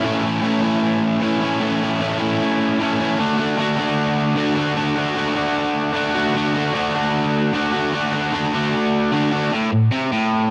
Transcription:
0.02 A2 E3 A3 C#4 E4
0.22 A3 C#4 E4
0.41 A2 E3 A3 C#4 E4
0.61 C#4 E4
0.65 A3
1.20 E3 A3 C#4 E4
1.40 A3 C#4 E4
1.60 A2 E3 A3 C#4
1.64 E4
1.81 A3 C#4 E4
2.00 A2 E3 A3 C#4 E4
2.19 C#4 E4
2.23 A3
2.79 E3 A3 C#4
2.83 E4
2.99 A3 C#4 E4
3.18 D3 A3 D4 F#4
3.37 A3 D4 F#4
3.57 D3 A3 D4 F#4
3.76 A3 D4 F#4
4.35 D3 A3 D4
4.40 F#4
4.55 A3 D4 F#4
4.75 D3 A3 D4 F#4
4.95 A3 D4 F#4
5.15 D3 A3 D4 F#4
5.35 A3 D4 F#4
5.93 D3 A3 D4
5.97 F#4
6.14 A3 D4 F#4
6.34 D3 A3 D4
6.38 F#4
6.54 A3 D4 F#4
6.74 D3 A3 D4 F#4
6.94 A3 D4 F#4
7.53 D3 A3 D4 F#4
7.73 A3 D4 F#4
7.93 D3 A3 D4
7.97 F#4
8.12 D4 F#4
8.16 A3
8.32 D3 A3 D4 F#4
8.53 A3 D4 F#4
9.12 D3 A3 D4 F#4
9.31 D4 F#4
9.36 A3
9.52 A2
9.72 A2
9.92 C3
10.12 A2

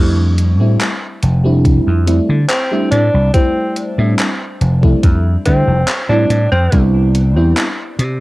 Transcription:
Already playing: F2 G3 A3 C4 D4 E4
0.38 closed hi-hat
0.60 A2 G3 A3 C4 D4 E4
0.81 clap, closed hi-hat
1.23 F1, closed hi-hat
1.44 G3 A3 C4 D4 E4
1.65 kick, closed hi-hat
1.87 F2
2.06 G3 A3 C4 D4 E4, closed hi-hat
2.29 D3
2.49 C4, clap, closed hi-hat
2.71 G3 A3 C4 D4 E4
2.91 A2 D4, closed hi-hat
3.14 C2
3.33 G3 A3 C4 D4 E4, kick, closed hi-hat
3.76 closed hi-hat
3.98 A2 G3 A3 C4 D4 E4
4.19 clap, closed hi-hat
4.61 F1, closed hi-hat
4.82 G3 A3 C4 D4 E4, kick
5.03 F2, kick, closed hi-hat
5.45 D3 G3 A3 C4 D4 E4, kick, closed hi-hat
5.67 F1
5.88 clap, closed hi-hat
6.09 A2 G3 A3 C4 D4 E4
6.30 A2, closed hi-hat
6.52 F2 C4
6.72 C2 G3 B3 C4 D4 E4, kick, closed hi-hat
7.15 closed hi-hat
7.36 E2 G3 B3 C4 D4 E4
7.57 clap, closed hi-hat
7.99 C3, closed hi-hat

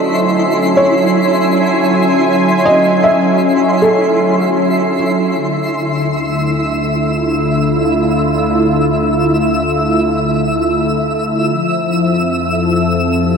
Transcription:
Already playing: D3 F#3 A3 C#4 E4 A4 D#5 C6
0.07 G#5
0.77 C#5
2.65 D#5
3.04 E5
3.82 A4
5.35 D2 D3 E5 E6
6.15 E4
6.19 A3
6.75 F4
11.52 F2 F3
11.86 C4
12.42 A4
13.23 G4

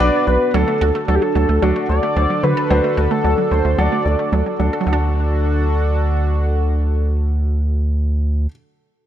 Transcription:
Already playing: B3 D4 F#4 D5
0.00 B1 D4 F#4 B4
0.27 B1 D4 F#4 B4
0.54 D2 D3 F#3 D4 F#4 A4
0.68 A3
0.81 D2 D4 F#4 A4
0.95 A3
1.08 D2 F#3 D4 F#4 A4
1.15 G4
1.22 F#3 A4
1.35 D2 F#3 D4 F#4 A4
1.49 D2 A3
1.62 D2 F#3 D4 F#4 A4
1.76 A3
1.89 D2 D4 F#4 A4 D5
2.03 A3
2.16 D2 F#3 D4 F#4 C5
2.30 F#3
2.43 D3 F#3 D4 F#4 B4 C5
2.57 A4
2.70 D2 F#3 D4 F#4 C5
2.84 A3
2.97 D2 D4 F#4 A4
3.11 A3 A4
3.24 D2 F#3 D4 F#4 A4
3.38 F#3
3.51 D2 F#3 D4 F#4 A4 C5
3.65 D2 A3
3.78 D2 F#3 D4 F#4 A4 D5
3.92 A3
4.05 D2 D4 F#4 A4
4.19 A3
4.32 D2 F#3 D4 F#4 A4
4.46 F#3
4.59 D2 F#3 D4 F#4 A4
4.73 A4
4.81 F#3 D4
4.86 D2 D3 A3 D4 F#4 A4
4.93 D4

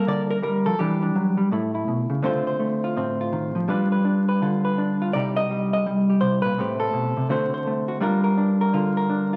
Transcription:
Already playing: G3 A#3 F4 A#4
0.07 D3 D5
0.30 A#4
0.42 G3 A#4
0.66 F3 A4
0.79 E3 G3 D4 G4
1.02 D4
1.15 F#3
1.37 G3
1.51 A2 A3 E4
1.75 E4
1.88 B2
2.10 C#3
2.22 D3 A3 C4 F4 C5
2.47 C5
2.60 A3
2.84 F4
2.96 A2 C4
3.21 F4
3.32 D#3
3.55 F3
3.68 G3 D4 F4 B4
3.92 B4
4.05 D4
4.29 B4
4.42 D3 F4
4.65 B4
4.78 D4
5.02 F4
5.13 C3 G3 D#4 G4 D5
5.36 D#5
5.50 G3
5.73 D#5
5.86 G3
6.10 G4
6.21 C3 C5
6.42 A#2 B4
6.58 A2 A3 C4 G4
6.80 A4
6.93 B2
7.17 C3
7.29 D3 A3 C4 F#4 C5
7.54 C5
7.67 A3
7.88 F#4
8.00 G3 D4 F4 A#4
8.24 A#4
8.38 D4
8.61 A#4
8.73 D3 F4
8.97 A#4
9.10 D4
9.33 F4

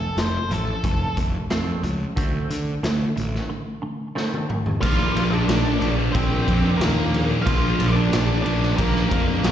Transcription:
Already playing: F3 A3 A4
0.17 F1 F3 A3 C5, snare, closed hi-hat
0.50 A1 F3 A3 A4, closed hi-hat
0.84 F1 F3 A3, kick, closed hi-hat
1.17 F1 F3 A3, kick, closed hi-hat
1.50 F2 F3 A3 C4, snare, closed hi-hat
1.83 C#2 F3 A3, closed hi-hat
2.16 D2 D3 A3 C4, kick, closed hi-hat
2.50 D3 A3, closed hi-hat
2.83 D2 D3 A3, snare, closed hi-hat
3.16 A1 D3 A3, closed hi-hat
3.35 snare
3.49 D3 A3
3.82 D3 A3
4.15 D3 A3 C4, snare
4.34 high tom
4.49 D3 A3, mid tom
4.66 floor tom
4.82 A#1 A#2 F3 A#3 D4 F4 F5, kick, crash
5.16 A#1 A#2 F3 A#3 D4, crash
5.31 F3 A#3 D4 D5
5.48 A#1 A#2 F3 A#3 D4, snare, crash
5.64 F3 A#3 D4
5.79 A#1 A#2 F3 A#3 D4 D5, crash
5.97 F3 A#3 D4
6.12 A#1 C4 C5, kick, crash
6.30 F3 A#3 D4
6.46 F2 A#2 F3 A#3 D4, kick, crash
6.64 F3 A#3 D4
6.77 D#2 A#2 F3 A#3 A#4, crash
6.81 A#3 D4, snare
7.14 A#2 F3 A#3 D4, crash
7.29 F3 A#3 D4
7.42 F4 F5
7.46 A#1 A#2 F3 A#3 D4, kick, crash
7.80 A#1 A#2 F3 A#3 D4, crash
7.88 C5 D5
7.96 F3 A#3 D4
8.12 A#1 A#2 F3 A#3 D4, snare, crash
8.30 F3 A#3 D4
8.42 A#1 A#2 F3 A#3 D4 D5, crash
8.61 F3 A#3 D4, snare
8.76 A#1 A#3 A#4, kick, crash
8.95 F3 A#3 D4, snare
9.09 F2 A#2 F3 A#3 D4 A#4, kick, crash
9.27 F3 A#3 D4
9.42 A#1 A#2 F3 A#3 D4, snare, crash

